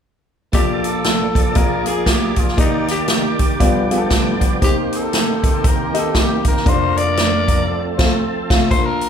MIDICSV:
0, 0, Header, 1, 5, 480
1, 0, Start_track
1, 0, Key_signature, -2, "major"
1, 0, Tempo, 510247
1, 507, Time_signature, 4, 2, 24, 8
1, 8554, End_track
2, 0, Start_track
2, 0, Title_t, "Tenor saxophone"
2, 0, Program_c, 0, 66
2, 513, Note_on_c, 0, 67, 94
2, 797, Note_on_c, 0, 69, 89
2, 811, Note_off_c, 0, 67, 0
2, 1481, Note_on_c, 0, 70, 87
2, 1495, Note_off_c, 0, 69, 0
2, 1753, Note_off_c, 0, 70, 0
2, 1758, Note_on_c, 0, 68, 88
2, 1961, Note_on_c, 0, 67, 85
2, 1975, Note_off_c, 0, 68, 0
2, 2252, Note_on_c, 0, 65, 73
2, 2266, Note_off_c, 0, 67, 0
2, 2437, Note_off_c, 0, 65, 0
2, 2442, Note_on_c, 0, 63, 93
2, 2701, Note_off_c, 0, 63, 0
2, 2737, Note_on_c, 0, 67, 80
2, 3648, Note_off_c, 0, 67, 0
2, 4366, Note_on_c, 0, 67, 88
2, 4491, Note_off_c, 0, 67, 0
2, 4665, Note_on_c, 0, 69, 82
2, 5336, Note_on_c, 0, 70, 76
2, 5350, Note_off_c, 0, 69, 0
2, 5608, Note_off_c, 0, 70, 0
2, 5627, Note_on_c, 0, 69, 82
2, 5820, Note_on_c, 0, 67, 75
2, 5834, Note_off_c, 0, 69, 0
2, 6090, Note_off_c, 0, 67, 0
2, 6095, Note_on_c, 0, 70, 91
2, 6288, Note_on_c, 0, 72, 111
2, 6302, Note_off_c, 0, 70, 0
2, 6566, Note_on_c, 0, 74, 94
2, 6580, Note_off_c, 0, 72, 0
2, 7520, Note_off_c, 0, 74, 0
2, 8195, Note_on_c, 0, 72, 108
2, 8330, Note_on_c, 0, 70, 106
2, 8344, Note_off_c, 0, 72, 0
2, 8554, Note_off_c, 0, 70, 0
2, 8554, End_track
3, 0, Start_track
3, 0, Title_t, "Grand piano"
3, 0, Program_c, 1, 0
3, 506, Note_on_c, 1, 58, 64
3, 508, Note_on_c, 1, 46, 59
3, 510, Note_on_c, 1, 69, 62
3, 511, Note_on_c, 1, 65, 67
3, 513, Note_on_c, 1, 34, 59
3, 513, Note_on_c, 1, 74, 72
3, 1070, Note_off_c, 1, 58, 0
3, 1073, Note_off_c, 1, 65, 0
3, 1073, Note_off_c, 1, 69, 0
3, 1074, Note_off_c, 1, 74, 0
3, 1430, Note_off_c, 1, 46, 0
3, 1432, Note_off_c, 1, 34, 0
3, 1460, Note_on_c, 1, 58, 69
3, 1461, Note_on_c, 1, 46, 59
3, 1462, Note_on_c, 1, 65, 62
3, 1462, Note_on_c, 1, 68, 60
3, 1464, Note_on_c, 1, 34, 61
3, 1466, Note_on_c, 1, 74, 83
3, 1692, Note_off_c, 1, 58, 0
3, 1693, Note_off_c, 1, 65, 0
3, 1693, Note_off_c, 1, 68, 0
3, 1695, Note_off_c, 1, 74, 0
3, 1744, Note_on_c, 1, 58, 61
3, 1749, Note_on_c, 1, 65, 57
3, 1753, Note_on_c, 1, 68, 55
3, 1756, Note_on_c, 1, 70, 64
3, 2148, Note_off_c, 1, 58, 0
3, 2151, Note_off_c, 1, 65, 0
3, 2153, Note_off_c, 1, 68, 0
3, 2154, Note_off_c, 1, 70, 0
3, 2387, Note_off_c, 1, 46, 0
3, 2388, Note_off_c, 1, 34, 0
3, 2417, Note_on_c, 1, 39, 60
3, 2420, Note_on_c, 1, 58, 74
3, 2420, Note_on_c, 1, 63, 66
3, 2422, Note_on_c, 1, 51, 61
3, 2423, Note_on_c, 1, 67, 61
3, 2425, Note_on_c, 1, 74, 75
3, 2988, Note_off_c, 1, 58, 0
3, 2988, Note_off_c, 1, 63, 0
3, 2989, Note_off_c, 1, 67, 0
3, 2990, Note_off_c, 1, 74, 0
3, 3344, Note_off_c, 1, 39, 0
3, 3347, Note_off_c, 1, 51, 0
3, 3379, Note_on_c, 1, 59, 85
3, 3384, Note_on_c, 1, 65, 83
3, 3387, Note_on_c, 1, 43, 73
3, 3387, Note_on_c, 1, 67, 76
3, 3391, Note_on_c, 1, 31, 72
3, 3392, Note_on_c, 1, 74, 97
3, 3612, Note_off_c, 1, 59, 0
3, 3615, Note_off_c, 1, 65, 0
3, 3616, Note_off_c, 1, 67, 0
3, 3619, Note_off_c, 1, 74, 0
3, 3668, Note_on_c, 1, 59, 70
3, 3675, Note_on_c, 1, 65, 71
3, 3678, Note_on_c, 1, 68, 71
3, 3682, Note_on_c, 1, 67, 74
3, 3722, Note_off_c, 1, 68, 0
3, 3740, Note_on_c, 1, 69, 93
3, 4071, Note_off_c, 1, 59, 0
3, 4074, Note_off_c, 1, 65, 0
3, 4078, Note_off_c, 1, 67, 0
3, 4107, Note_off_c, 1, 69, 0
3, 4310, Note_off_c, 1, 43, 0
3, 4312, Note_off_c, 1, 31, 0
3, 4340, Note_on_c, 1, 58, 68
3, 4342, Note_on_c, 1, 51, 57
3, 4344, Note_on_c, 1, 39, 60
3, 4344, Note_on_c, 1, 63, 64
3, 4345, Note_on_c, 1, 67, 64
3, 4347, Note_on_c, 1, 72, 79
3, 4908, Note_off_c, 1, 58, 0
3, 4910, Note_off_c, 1, 63, 0
3, 4910, Note_off_c, 1, 67, 0
3, 4911, Note_off_c, 1, 72, 0
3, 5579, Note_on_c, 1, 63, 62
3, 5583, Note_on_c, 1, 58, 66
3, 5588, Note_on_c, 1, 67, 60
3, 5589, Note_on_c, 1, 75, 71
3, 5986, Note_off_c, 1, 63, 0
3, 5988, Note_off_c, 1, 58, 0
3, 5991, Note_off_c, 1, 67, 0
3, 5991, Note_off_c, 1, 75, 0
3, 6227, Note_off_c, 1, 51, 0
3, 6228, Note_off_c, 1, 39, 0
3, 6259, Note_on_c, 1, 58, 70
3, 6260, Note_on_c, 1, 62, 65
3, 6261, Note_on_c, 1, 29, 64
3, 6265, Note_on_c, 1, 65, 65
3, 6266, Note_on_c, 1, 41, 57
3, 6270, Note_on_c, 1, 74, 79
3, 6827, Note_off_c, 1, 58, 0
3, 6828, Note_off_c, 1, 62, 0
3, 6830, Note_off_c, 1, 65, 0
3, 6832, Note_off_c, 1, 74, 0
3, 7187, Note_off_c, 1, 29, 0
3, 7189, Note_off_c, 1, 41, 0
3, 7503, Note_on_c, 1, 60, 77
3, 7508, Note_on_c, 1, 65, 76
3, 7513, Note_on_c, 1, 72, 93
3, 7559, Note_on_c, 1, 57, 80
3, 7639, Note_off_c, 1, 60, 0
3, 7643, Note_off_c, 1, 65, 0
3, 7645, Note_off_c, 1, 72, 0
3, 7671, Note_off_c, 1, 57, 0
3, 7995, Note_on_c, 1, 60, 86
3, 7998, Note_on_c, 1, 65, 88
3, 8002, Note_on_c, 1, 72, 84
3, 8050, Note_on_c, 1, 57, 90
3, 8126, Note_off_c, 1, 60, 0
3, 8128, Note_off_c, 1, 65, 0
3, 8130, Note_off_c, 1, 72, 0
3, 8158, Note_off_c, 1, 57, 0
3, 8183, Note_on_c, 1, 58, 63
3, 8186, Note_on_c, 1, 34, 61
3, 8186, Note_on_c, 1, 46, 63
3, 8188, Note_on_c, 1, 62, 60
3, 8193, Note_on_c, 1, 65, 68
3, 8193, Note_on_c, 1, 70, 76
3, 8554, Note_off_c, 1, 34, 0
3, 8554, Note_off_c, 1, 46, 0
3, 8554, Note_off_c, 1, 58, 0
3, 8554, Note_off_c, 1, 62, 0
3, 8554, Note_off_c, 1, 65, 0
3, 8554, Note_off_c, 1, 70, 0
3, 8554, End_track
4, 0, Start_track
4, 0, Title_t, "Tonewheel organ"
4, 0, Program_c, 2, 16
4, 490, Note_on_c, 2, 58, 50
4, 492, Note_on_c, 2, 69, 61
4, 493, Note_on_c, 2, 53, 51
4, 497, Note_on_c, 2, 74, 50
4, 1450, Note_off_c, 2, 53, 0
4, 1450, Note_off_c, 2, 69, 0
4, 1469, Note_on_c, 2, 68, 64
4, 1476, Note_on_c, 2, 53, 60
4, 2418, Note_off_c, 2, 68, 0
4, 2419, Note_on_c, 2, 67, 64
4, 2421, Note_on_c, 2, 51, 59
4, 2422, Note_off_c, 2, 53, 0
4, 3350, Note_off_c, 2, 58, 0
4, 3366, Note_on_c, 2, 59, 55
4, 3374, Note_off_c, 2, 51, 0
4, 3375, Note_on_c, 2, 53, 61
4, 4305, Note_off_c, 2, 74, 0
4, 4327, Note_off_c, 2, 59, 0
4, 4332, Note_off_c, 2, 53, 0
4, 4343, Note_on_c, 2, 60, 50
4, 4350, Note_on_c, 2, 58, 56
4, 4351, Note_on_c, 2, 51, 52
4, 6226, Note_off_c, 2, 67, 0
4, 6246, Note_off_c, 2, 60, 0
4, 6250, Note_off_c, 2, 51, 0
4, 6259, Note_on_c, 2, 53, 56
4, 6259, Note_on_c, 2, 70, 70
4, 6263, Note_on_c, 2, 62, 51
4, 7200, Note_off_c, 2, 58, 0
4, 7214, Note_off_c, 2, 70, 0
4, 7216, Note_off_c, 2, 62, 0
4, 7218, Note_on_c, 2, 57, 55
4, 7218, Note_on_c, 2, 60, 54
4, 7219, Note_on_c, 2, 69, 60
4, 8164, Note_off_c, 2, 53, 0
4, 8173, Note_off_c, 2, 57, 0
4, 8173, Note_off_c, 2, 60, 0
4, 8174, Note_off_c, 2, 69, 0
4, 8554, End_track
5, 0, Start_track
5, 0, Title_t, "Drums"
5, 498, Note_on_c, 9, 42, 79
5, 501, Note_on_c, 9, 36, 94
5, 592, Note_off_c, 9, 42, 0
5, 595, Note_off_c, 9, 36, 0
5, 790, Note_on_c, 9, 42, 56
5, 884, Note_off_c, 9, 42, 0
5, 981, Note_on_c, 9, 42, 86
5, 985, Note_on_c, 9, 38, 90
5, 1075, Note_off_c, 9, 42, 0
5, 1079, Note_off_c, 9, 38, 0
5, 1273, Note_on_c, 9, 36, 90
5, 1278, Note_on_c, 9, 42, 72
5, 1367, Note_off_c, 9, 36, 0
5, 1372, Note_off_c, 9, 42, 0
5, 1459, Note_on_c, 9, 42, 73
5, 1466, Note_on_c, 9, 36, 101
5, 1553, Note_off_c, 9, 42, 0
5, 1560, Note_off_c, 9, 36, 0
5, 1747, Note_on_c, 9, 42, 69
5, 1841, Note_off_c, 9, 42, 0
5, 1941, Note_on_c, 9, 38, 113
5, 1942, Note_on_c, 9, 36, 76
5, 1948, Note_on_c, 9, 42, 87
5, 2035, Note_off_c, 9, 38, 0
5, 2036, Note_off_c, 9, 36, 0
5, 2042, Note_off_c, 9, 42, 0
5, 2222, Note_on_c, 9, 42, 71
5, 2228, Note_on_c, 9, 36, 79
5, 2316, Note_off_c, 9, 42, 0
5, 2322, Note_off_c, 9, 36, 0
5, 2334, Note_on_c, 9, 38, 28
5, 2426, Note_on_c, 9, 36, 103
5, 2426, Note_on_c, 9, 42, 80
5, 2428, Note_off_c, 9, 38, 0
5, 2520, Note_off_c, 9, 36, 0
5, 2520, Note_off_c, 9, 42, 0
5, 2712, Note_on_c, 9, 38, 31
5, 2712, Note_on_c, 9, 42, 68
5, 2806, Note_off_c, 9, 38, 0
5, 2806, Note_off_c, 9, 42, 0
5, 2895, Note_on_c, 9, 42, 91
5, 2899, Note_on_c, 9, 38, 101
5, 2989, Note_off_c, 9, 42, 0
5, 2993, Note_off_c, 9, 38, 0
5, 3190, Note_on_c, 9, 42, 67
5, 3194, Note_on_c, 9, 36, 81
5, 3284, Note_off_c, 9, 42, 0
5, 3288, Note_off_c, 9, 36, 0
5, 3389, Note_on_c, 9, 42, 73
5, 3390, Note_on_c, 9, 36, 95
5, 3483, Note_off_c, 9, 42, 0
5, 3485, Note_off_c, 9, 36, 0
5, 3678, Note_on_c, 9, 42, 66
5, 3772, Note_off_c, 9, 42, 0
5, 3859, Note_on_c, 9, 38, 106
5, 3864, Note_on_c, 9, 36, 83
5, 3866, Note_on_c, 9, 42, 87
5, 3954, Note_off_c, 9, 38, 0
5, 3958, Note_off_c, 9, 36, 0
5, 3960, Note_off_c, 9, 42, 0
5, 4150, Note_on_c, 9, 36, 79
5, 4151, Note_on_c, 9, 42, 68
5, 4245, Note_off_c, 9, 36, 0
5, 4245, Note_off_c, 9, 42, 0
5, 4346, Note_on_c, 9, 42, 88
5, 4347, Note_on_c, 9, 36, 97
5, 4440, Note_off_c, 9, 42, 0
5, 4441, Note_off_c, 9, 36, 0
5, 4633, Note_on_c, 9, 42, 54
5, 4727, Note_off_c, 9, 42, 0
5, 4826, Note_on_c, 9, 42, 91
5, 4830, Note_on_c, 9, 38, 95
5, 4920, Note_off_c, 9, 42, 0
5, 4924, Note_off_c, 9, 38, 0
5, 5113, Note_on_c, 9, 36, 87
5, 5113, Note_on_c, 9, 42, 67
5, 5207, Note_off_c, 9, 36, 0
5, 5208, Note_off_c, 9, 42, 0
5, 5308, Note_on_c, 9, 42, 73
5, 5309, Note_on_c, 9, 36, 107
5, 5402, Note_off_c, 9, 42, 0
5, 5403, Note_off_c, 9, 36, 0
5, 5593, Note_on_c, 9, 42, 74
5, 5687, Note_off_c, 9, 42, 0
5, 5782, Note_on_c, 9, 38, 117
5, 5783, Note_on_c, 9, 36, 81
5, 5788, Note_on_c, 9, 42, 88
5, 5876, Note_off_c, 9, 38, 0
5, 5877, Note_off_c, 9, 36, 0
5, 5883, Note_off_c, 9, 42, 0
5, 6063, Note_on_c, 9, 42, 69
5, 6067, Note_on_c, 9, 36, 83
5, 6157, Note_off_c, 9, 42, 0
5, 6161, Note_off_c, 9, 36, 0
5, 6177, Note_on_c, 9, 38, 33
5, 6267, Note_on_c, 9, 36, 110
5, 6268, Note_on_c, 9, 42, 84
5, 6271, Note_off_c, 9, 38, 0
5, 6361, Note_off_c, 9, 36, 0
5, 6363, Note_off_c, 9, 42, 0
5, 6560, Note_on_c, 9, 42, 63
5, 6654, Note_off_c, 9, 42, 0
5, 6748, Note_on_c, 9, 42, 84
5, 6752, Note_on_c, 9, 38, 93
5, 6842, Note_off_c, 9, 42, 0
5, 6846, Note_off_c, 9, 38, 0
5, 7038, Note_on_c, 9, 36, 82
5, 7038, Note_on_c, 9, 42, 66
5, 7132, Note_off_c, 9, 36, 0
5, 7133, Note_off_c, 9, 42, 0
5, 7516, Note_on_c, 9, 36, 104
5, 7516, Note_on_c, 9, 38, 98
5, 7516, Note_on_c, 9, 49, 76
5, 7610, Note_off_c, 9, 36, 0
5, 7610, Note_off_c, 9, 38, 0
5, 7610, Note_off_c, 9, 49, 0
5, 7999, Note_on_c, 9, 36, 100
5, 8002, Note_on_c, 9, 38, 96
5, 8002, Note_on_c, 9, 49, 73
5, 8093, Note_off_c, 9, 36, 0
5, 8096, Note_off_c, 9, 38, 0
5, 8096, Note_off_c, 9, 49, 0
5, 8193, Note_on_c, 9, 36, 98
5, 8195, Note_on_c, 9, 42, 73
5, 8287, Note_off_c, 9, 36, 0
5, 8289, Note_off_c, 9, 42, 0
5, 8478, Note_on_c, 9, 42, 54
5, 8554, Note_off_c, 9, 42, 0
5, 8554, End_track
0, 0, End_of_file